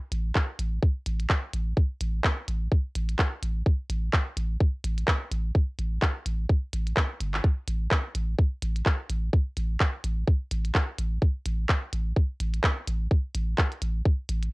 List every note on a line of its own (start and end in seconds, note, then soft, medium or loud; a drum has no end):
0.12 0.31 A1 loud
0.12 closed hi-hat medium
0.35 kick loud
0.35 clap medium
0.59 0.79 A1 medium
0.59 closed hi-hat medium
0.83 kick loud
1.06 1.26 A1 loud
1.06 closed hi-hat medium
1.20 closed hi-hat soft
1.30 kick loud
1.30 clap medium
1.53 1.73 A1 medium
1.53 closed hi-hat medium
1.77 kick loud
2.01 2.20 A1 medium
2.01 closed hi-hat medium
2.24 kick loud
2.24 clap medium
2.48 2.68 A1 medium
2.48 closed hi-hat medium
2.72 kick loud
2.95 3.15 A1 loud
2.95 closed hi-hat medium
3.09 closed hi-hat soft
3.19 kick loud
3.19 clap medium
3.43 3.62 A1 medium
3.43 closed hi-hat medium
3.66 kick loud
3.90 4.09 A1 medium
3.90 closed hi-hat medium
4.13 kick loud
4.13 clap medium
4.37 4.57 A1 medium
4.37 closed hi-hat loud
4.61 kick loud
4.84 5.04 A1 loud
4.84 closed hi-hat medium
4.98 closed hi-hat soft
5.08 kick loud
5.08 clap medium
5.31 5.51 A1 loud
5.31 closed hi-hat medium
5.55 kick loud
5.79 5.98 A1 loud
5.79 closed hi-hat medium
6.02 kick loud
6.02 clap medium
6.26 6.46 A1 medium
6.26 closed hi-hat medium
6.49 kick loud
6.73 6.93 A1 medium
6.73 closed hi-hat medium
6.87 closed hi-hat soft
6.97 kick loud
6.97 clap medium
7.20 7.40 G1 loud
7.20 closed hi-hat medium
7.34 clap medium
7.44 kick loud
7.68 7.87 A1 loud
7.68 closed hi-hat medium
7.91 kick loud
7.91 clap medium
8.15 8.35 A1 loud
8.15 closed hi-hat medium
8.39 kick loud
8.62 8.82 A1 loud
8.62 closed hi-hat medium
8.76 closed hi-hat soft
8.86 kick loud
8.86 clap medium
9.09 9.29 A1 medium
9.09 closed hi-hat medium
9.33 kick loud
9.57 9.76 A1 loud
9.57 closed hi-hat medium
9.80 kick loud
9.80 clap medium
10.04 10.24 A1 medium
10.04 closed hi-hat medium
10.28 kick loud
10.51 10.71 A1 loud
10.51 closed hi-hat medium
10.65 closed hi-hat soft
10.75 kick loud
10.75 clap medium
10.98 11.18 A1 loud
10.98 closed hi-hat medium
11.22 kick loud
11.46 11.65 A1 medium
11.46 closed hi-hat medium
11.69 kick loud
11.69 clap medium
11.93 12.13 A1 medium
11.93 closed hi-hat medium
12.16 kick loud
12.40 12.60 A1 loud
12.40 closed hi-hat medium
12.54 closed hi-hat soft
12.64 kick loud
12.64 clap medium
12.87 13.07 A1 loud
12.87 closed hi-hat medium
13.11 kick loud
13.35 13.54 A1 loud
13.35 closed hi-hat medium
13.58 kick loud
13.58 clap medium
13.72 closed hi-hat soft
13.82 14.01 A1 loud
13.82 closed hi-hat medium
14.05 kick loud
14.29 14.49 A1 loud
14.29 closed hi-hat medium
14.43 closed hi-hat soft